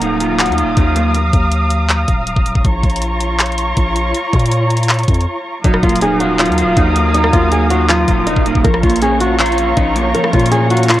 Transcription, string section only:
0.00 2.62 F#3 medium
0.00 2.61 F5 medium
0.00 2.61 A#5 medium
0.00 2.61 D#6 medium
2.65 5.62 F4 medium
2.65 5.62 C#5 medium
2.65 5.62 A#5 medium
2.65 5.62 C#6 medium
5.65 8.62 F#3 medium
5.65 8.62 F5 medium
5.65 8.62 A#5 medium
5.65 8.62 D#6 medium
8.64 11.00 F4 medium
8.64 11.00 C#5 medium
8.64 11.00 A#5 medium
8.64 11.00 C#6 medium

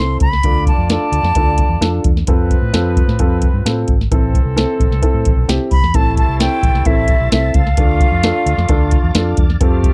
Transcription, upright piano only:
0.00 0.24 C4 medium
0.00 0.24 E4 medium
0.00 0.24 A4 medium
0.44 0.70 D4 medium
0.44 0.70 F4 medium
0.44 0.70 A4 medium
0.90 1.15 D4 medium
0.90 1.16 F4 medium
0.90 1.16 A4 medium
1.36 1.61 D4 medium
1.36 1.62 F4 medium
1.36 1.62 A4 medium
1.81 2.07 D4 medium
1.81 2.07 F4 medium
1.81 2.07 A4 medium
2.28 2.53 C4 medium
2.28 2.53 F4 medium
2.28 2.54 A4 medium
2.73 2.99 C4 medium
2.73 2.99 F4 medium
2.73 2.99 A4 medium
3.20 3.45 C4 medium
3.20 3.45 F4 medium
3.20 3.45 A4 medium
3.66 3.91 C4 medium
3.66 3.91 F4 medium
3.66 3.91 A4 medium
4.12 4.37 C4 medium
4.12 4.37 E4 medium
4.12 4.37 A4 medium
4.57 4.82 C4 medium
4.57 4.82 E4 medium
4.57 4.82 A4 loud
5.02 5.28 C4 medium
5.02 5.28 E4 medium
5.02 5.28 A4 medium
5.48 5.74 C4 medium
5.48 5.74 E4 medium
5.48 5.74 G4 medium
5.95 6.20 C4 medium
5.95 6.20 E4 medium
5.95 6.20 A4 medium
6.40 6.66 C4 medium
6.40 6.66 E4 medium
6.40 6.66 A4 medium
6.86 7.12 C4 medium
6.86 7.12 E4 medium
6.86 7.12 A4 medium
7.32 7.58 C4 medium
7.32 7.58 E4 medium
7.32 7.58 A4 medium
7.78 8.03 D4 medium
7.78 8.03 F4 medium
7.78 8.03 A4 medium
8.24 8.49 D4 medium
8.24 8.49 F4 medium
8.24 8.49 A4 medium
8.69 8.95 D4 medium
8.69 8.95 F4 medium
8.69 8.95 A4 loud
9.15 9.41 D4 medium
9.15 9.41 F4 medium
9.15 9.41 A4 medium
9.61 9.86 C4 medium
9.61 9.87 F4 medium
9.61 9.87 A4 medium

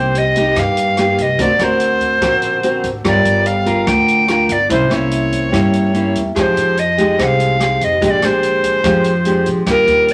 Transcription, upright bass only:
0.00 0.52 C2 medium
0.56 1.14 G2 medium
1.18 1.37 C2 medium
1.39 1.58 D2 loud
1.59 2.17 D2 medium
2.21 2.79 A#1 medium
2.84 3.03 G#1 medium
3.05 3.24 G1 loud
3.25 3.83 G1 medium
3.87 4.45 D2 loud
4.49 4.68 G1 medium
4.70 4.89 C2 loud
4.90 5.48 C2 medium
5.53 6.11 G2 loud
6.15 6.34 E2 medium
6.36 6.55 F2 medium
6.56 7.14 F2 medium
7.19 7.77 C2 medium
7.81 8.00 F2 medium
8.02 8.21 A#1 medium
8.22 8.80 A#1 medium
8.84 9.42 F2 medium
9.46 9.65 A#1 medium
9.67 9.86 D#2 loud
9.87 10.14 D#2 medium

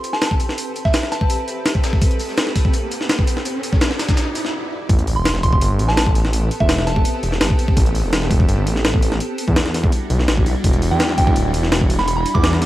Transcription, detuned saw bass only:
4.89 5.15 A1 loud
5.17 5.60 E1 medium
5.61 5.80 G1 loud
5.79 6.49 A1 medium
6.60 7.04 E1 medium
7.23 7.39 E1 medium
7.41 7.49 G1 medium
7.77 8.02 A1 loud
8.04 8.47 E1 medium
8.49 8.68 G1 loud
8.67 9.19 A1 medium
9.48 9.91 E2 medium
10.10 10.26 B1 medium
10.28 10.47 A1 medium
10.46 10.54 B1 medium
10.64 10.90 E1 loud
10.91 11.35 E2 medium
11.36 11.55 D1 loud
11.54 12.24 E1 medium
12.35 12.66 E2 medium

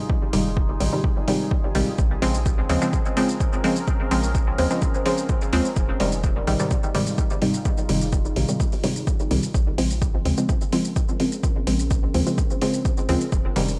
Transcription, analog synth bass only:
0.33 0.74 F1 medium
0.80 0.88 A#1 loud
1.75 1.83 A#1 medium
1.99 2.14 A#1 loud
2.22 2.63 A#1 medium
2.69 2.77 D#2 loud
4.11 4.52 A#1 medium
4.58 4.66 D#2 loud
5.53 5.61 D#2 medium
5.76 5.92 F1 loud
6.00 6.41 F1 medium
6.48 6.55 A#1 loud
7.89 8.30 F1 medium
8.36 8.44 A#1 loud
9.31 9.39 C2 medium
9.54 9.70 A#1 loud
9.78 10.19 A#1 medium
10.25 10.33 D#2 loud
11.67 12.08 A#1 medium
12.14 12.22 D#2 loud
13.09 13.17 D#2 medium
13.32 13.48 F1 loud
13.56 13.79 F1 medium

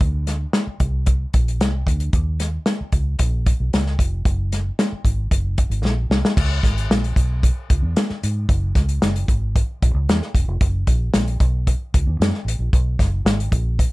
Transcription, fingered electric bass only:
0.01 0.45 D2 loud
0.67 muted fingered electric bass stroke soft
0.80 1.24 C2 medium
1.34 1.61 A#1 medium
1.61 1.83 C2 medium
1.86 2.09 D2 medium
2.13 2.57 D#2 medium
2.81 muted fingered electric bass stroke soft
2.93 3.15 C#2 medium
3.19 3.52 A#1 medium
3.60 3.71 B1 medium
3.74 3.95 C#2 medium
3.99 4.21 F1 medium
4.26 4.69 F#1 loud
4.92 muted fingered electric bass stroke soft
5.05 5.27 G#1 medium
5.32 5.64 F#1 medium
5.70 5.81 G#1 medium
5.83 6.06 A#1 medium
6.10 6.21 C2 medium
6.37 6.59 C#2 loud
6.63 6.85 G#1 medium
6.90 7.12 A#1 medium
7.16 7.49 B1 medium
7.70 7.81 C#2 medium
7.82 7.94 E2 medium
8.11 muted fingered electric bass stroke soft
8.24 8.45 G#2 medium
8.49 8.71 F#1 loud
8.76 8.98 C#2 medium
9.03 9.25 F#1 loud
9.28 9.61 G#1 medium
9.82 9.93 A#1 medium
9.94 10.06 C#2 loud
10.09 10.19 E2 loud
10.35 10.46 E1 medium
10.48 10.59 F1 medium
10.61 10.83 F#1 loud
10.87 11.09 A#1 medium
11.14 11.36 A#1 loud
11.41 11.73 B1 medium
11.94 12.05 C#2 medium
12.06 12.17 D#2 medium
12.20 12.31 F#2 medium
12.45 12.56 A1 medium
12.59 12.70 A#1 medium
12.73 12.95 B1 loud
12.99 13.21 F#1 medium
13.25 13.47 G#1 medium
13.52 13.84 A#1 medium

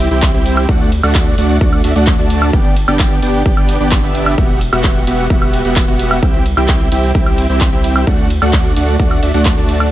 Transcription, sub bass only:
0.11 0.32 C2 loud
0.34 0.67 C2 loud
0.69 1.01 D2 medium
1.03 1.36 D2 loud
1.38 1.59 D2 loud
1.61 1.82 D2 loud
1.84 1.93 D2 loud
1.96 2.17 D2 medium
2.19 2.51 D2 loud
2.53 2.86 G1 loud
2.88 3.20 G1 medium
3.23 3.43 G1 loud
3.46 3.78 G1 loud
3.80 4.01 G1 medium
4.03 4.36 G1 loud
4.38 4.70 E1 medium
4.73 5.05 E1 loud
5.07 5.28 E1 loud
5.30 5.63 E1 loud
5.65 5.86 E1 loud
5.88 6.20 E1 loud
6.23 6.55 C2 medium
6.57 6.90 C2 loud
6.92 7.13 C2 medium
7.15 7.47 C2 loud
7.50 7.70 C2 medium
7.73 8.05 C2 loud
8.07 8.40 D2 loud
8.42 8.74 D2 medium
8.77 8.97 D2 loud
9.00 9.20 D2 loud
9.23 9.32 D2 loud
9.34 9.55 D2 loud
9.57 9.90 D2 loud

